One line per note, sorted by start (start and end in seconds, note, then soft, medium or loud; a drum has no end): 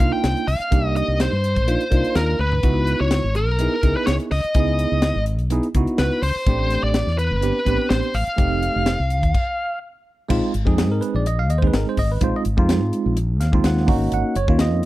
0.00 0.10 C2 medium
0.00 0.44 A#3 medium
0.00 0.44 D4 medium
0.00 0.45 D#4 medium
0.00 0.45 F4 medium
0.00 0.10 F5 medium
0.00 kick medium
0.00 closed hi-hat soft
0.12 0.45 G5 medium
0.24 0.34 C2 medium
0.24 snare medium
0.24 closed hi-hat medium
0.37 closed hi-hat soft
0.47 0.58 C2 medium
0.47 0.96 F5 medium
0.47 open hi-hat medium
0.61 closed hi-hat soft
0.71 1.01 C2 medium
0.71 1.31 A#3 medium
0.71 1.31 D4 medium
0.71 1.31 D#4 medium
0.71 1.32 G4 medium
0.71 kick loud
0.71 closed hi-hat medium
0.96 1.18 D#5 medium
0.96 closed hi-hat medium
1.08 1.27 C2 medium
1.20 2.16 C5 medium
1.20 snare loud
1.20 closed hi-hat medium
1.32 1.58 G2 medium
1.44 closed hi-hat medium
1.56 1.76 A#1 medium
1.56 kick medium
1.56 closed hi-hat soft
1.67 1.82 A#3 medium
1.67 1.83 D4 medium
1.67 1.83 D#4 medium
1.67 1.83 F4 medium
1.67 closed hi-hat medium
1.81 closed hi-hat soft
1.91 2.02 C2 medium
1.91 2.35 A#3 medium
1.91 2.36 D4 medium
1.91 2.36 D#4 medium
1.91 2.36 F4 medium
1.91 kick medium
1.91 closed hi-hat medium
2.04 closed hi-hat soft
2.15 2.37 D#2 medium
2.15 2.40 A#4 medium
2.15 snare loud
2.15 closed hi-hat medium
2.39 2.61 D2 medium
2.39 3.01 B4 medium
2.39 high tom soft
2.52 floor tom medium
2.63 2.93 C#2 medium
2.63 3.23 B3 medium
2.63 3.23 D#4 medium
2.63 3.23 E4 medium
2.63 3.23 F#4 medium
2.63 kick medium
2.63 closed hi-hat medium
2.87 closed hi-hat medium
3.00 3.19 C#2 medium
3.00 3.33 C#5 medium
3.11 snare loud
3.11 closed hi-hat medium
3.24 3.48 G#1 medium
3.35 3.96 A#4 medium
3.35 closed hi-hat medium
3.48 3.67 B1 medium
3.59 3.74 B3 medium
3.59 3.75 D#4 medium
3.59 3.75 E4 medium
3.59 3.75 G#4 medium
3.59 closed hi-hat medium
3.83 3.93 C#2 medium
3.83 4.27 B3 medium
3.83 4.28 D#4 medium
3.83 4.28 E4 medium
3.83 4.28 G#4 medium
3.83 kick medium
3.83 closed hi-hat soft
3.97 4.07 B4 medium
4.07 4.18 C#2 medium
4.07 4.13 C#5 medium
4.07 snare medium
4.07 closed hi-hat medium
4.20 closed hi-hat soft
4.31 4.41 C#2 medium
4.31 5.23 D#5 medium
4.31 open hi-hat medium
4.44 muted fretless electric bass stroke soft
4.44 closed hi-hat soft
4.54 4.85 C#2 medium
4.54 5.14 B3 medium
4.54 5.14 D#4 medium
4.54 5.15 E4 medium
4.54 5.15 G#4 medium
4.54 kick loud
4.54 closed hi-hat medium
4.79 closed hi-hat medium
4.92 5.11 C#2 medium
5.02 snare loud
5.02 closed hi-hat medium
5.16 5.40 G#1 medium
5.26 closed hi-hat medium
5.39 5.59 B1 medium
5.39 closed hi-hat soft
5.50 5.66 B3 medium
5.50 5.66 D#4 medium
5.50 5.67 E4 medium
5.50 5.67 G#4 medium
5.50 closed hi-hat medium
5.63 closed hi-hat soft
5.75 5.85 C#2 medium
5.75 6.19 B3 medium
5.75 6.20 D#4 medium
5.75 6.20 E4 medium
5.75 6.20 F#4 medium
5.75 kick medium
5.75 closed hi-hat medium
5.87 closed hi-hat soft
5.98 6.09 C#2 medium
5.98 6.21 B4 medium
5.98 snare loud
5.98 closed hi-hat medium
6.22 6.33 C#2 medium
6.22 6.83 C5 medium
6.22 open hi-hat medium
6.46 6.76 A1 medium
6.46 7.06 A3 medium
6.46 7.07 C4 medium
6.46 7.07 D4 medium
6.46 7.07 G4 medium
6.46 kick loud
6.46 closed hi-hat medium
6.70 snare soft
6.70 closed hi-hat medium
6.83 7.02 A1 medium
6.83 7.18 D5 medium
6.94 snare loud
6.94 closed hi-hat medium
7.07 7.32 E2 medium
7.07 snare soft
7.18 7.90 B4 medium
7.18 closed hi-hat medium
7.31 7.50 G1 medium
7.41 7.57 B3 medium
7.41 7.57 C4 medium
7.41 7.58 D4 medium
7.41 7.58 G4 medium
7.41 closed hi-hat medium
7.65 7.77 A1 medium
7.65 8.10 B3 medium
7.65 8.11 C4 medium
7.65 8.11 D4 medium
7.65 8.11 G4 medium
7.65 kick medium
7.65 closed hi-hat medium
7.90 8.01 A1 medium
7.90 8.15 C5 medium
7.90 snare loud
7.90 closed hi-hat medium
8.03 closed hi-hat soft
8.14 8.25 A1 medium
8.14 9.78 F5 medium
8.14 open hi-hat medium
8.27 muted fretless electric bass stroke soft
8.27 closed hi-hat soft
8.36 8.68 F1 medium
8.36 8.97 A3 medium
8.36 8.98 C4 medium
8.36 8.98 D#4 medium
8.36 8.98 G4 medium
8.36 kick loud
8.36 closed hi-hat medium
8.63 closed hi-hat medium
8.76 8.95 F1 medium
8.86 snare loud
8.86 closed hi-hat medium
9.00 9.23 C2 medium
9.10 closed hi-hat medium
9.23 9.32 D#2 medium
9.23 kick medium
9.23 closed hi-hat soft
9.34 kick medium
9.34 crash medium
10.29 10.41 A#1 medium
10.29 10.51 G#3 medium
10.29 10.52 C4 medium
10.29 10.52 D#4 medium
10.29 10.52 F4 medium
10.29 kick loud
10.29 crash medium
10.54 10.65 G#1 medium
10.54 closed hi-hat medium
10.65 10.90 F2 medium
10.65 11.24 G#3 medium
10.65 11.24 C4 medium
10.65 11.25 D#4 medium
10.65 11.25 G#4 medium
10.65 kick medium
10.78 snare loud
10.78 closed hi-hat medium
10.90 11.00 G#2 medium
10.90 11.02 A#4 medium
11.01 11.14 B4 medium
11.01 closed hi-hat medium
11.15 11.50 A#1 medium
11.15 11.26 D5 medium
11.26 11.39 D#5 medium
11.26 closed hi-hat medium
11.39 11.50 F5 medium
11.50 11.69 D#2 medium
11.50 11.58 D#5 medium
11.50 closed hi-hat medium
11.58 11.98 G#3 medium
11.58 11.66 C5 medium
11.62 11.98 C4 medium
11.62 11.99 D#4 medium
11.62 11.99 G#4 medium
11.62 kick medium
11.67 11.74 B4 medium
11.73 11.84 G#1 medium
11.73 11.87 A#4 medium
11.73 snare loud
11.73 closed hi-hat medium
11.89 11.98 C5 medium
11.97 12.17 G#1 medium
11.97 12.10 D#5 loud
11.97 kick medium
11.97 open hi-hat medium
12.12 12.22 B4 medium
12.20 12.32 A#1 medium
12.20 12.43 G#3 medium
12.20 12.43 C4 medium
12.20 12.44 D#4 medium
12.20 12.44 F4 medium
12.20 12.35 C5 medium
12.20 kick loud
12.20 closed hi-hat medium
12.36 12.42 D#5 medium
12.45 12.56 G#1 medium
12.45 closed hi-hat medium
12.57 12.82 F2 medium
12.57 13.15 G#3 medium
12.57 13.16 C4 medium
12.57 13.16 D#4 medium
12.57 13.16 F4 medium
12.57 kick medium
12.69 snare loud
12.69 closed hi-hat medium
12.82 12.91 G#2 medium
12.93 closed hi-hat medium
13.06 13.41 A#1 medium
13.17 closed hi-hat medium
13.41 13.60 D#2 medium
13.41 13.63 F5 medium
13.41 snare soft
13.41 closed hi-hat medium
13.53 13.88 G#3 medium
13.53 13.88 C4 medium
13.53 13.87 D#4 medium
13.53 13.89 F4 medium
13.53 kick medium
13.64 13.90 D#2 medium
13.64 14.09 F#5 medium
13.64 snare loud
13.64 closed hi-hat medium
13.77 snare soft
13.87 14.08 G#1 medium
13.87 14.35 A#3 medium
13.87 14.35 C#4 medium
13.87 14.36 D#4 medium
13.87 14.36 F#4 medium
13.87 kick loud
13.87 open hi-hat medium
14.12 14.22 G#1 medium
14.12 14.36 F#5 medium
14.12 closed hi-hat medium
14.36 14.46 F#1 medium
14.36 14.59 C#5 medium
14.36 closed hi-hat medium
14.48 14.72 D#2 medium
14.48 14.85 A#3 medium
14.48 14.85 C#4 medium
14.48 14.85 D#4 medium
14.48 14.85 F4 medium
14.48 kick medium
14.59 14.85 D#5 medium
14.59 snare loud
14.59 closed hi-hat medium
14.72 14.81 F2 medium